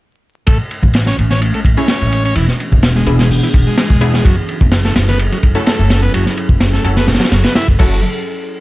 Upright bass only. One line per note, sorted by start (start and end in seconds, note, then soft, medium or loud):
0.48 0.56 A1 medium
0.83 1.13 A1 medium
1.18 1.49 A1 medium
1.65 1.74 A1 medium
2.02 2.31 A1 medium
2.36 2.45 E1 medium
2.73 3.02 E1 medium
3.06 3.37 E1 medium
3.54 3.63 E1 medium
3.90 4.20 E1 medium
4.25 4.34 F#1 medium
4.61 4.91 F#1 medium
4.96 5.26 F#1 medium
5.43 5.52 F#1 medium
5.79 6.09 F#1 medium
6.14 6.23 F#1 loud
6.49 6.79 F#1 medium
6.84 7.15 F#1 medium
7.32 7.41 F#1 medium
7.68 7.79 F#1 medium
7.80 8.01 F#1 loud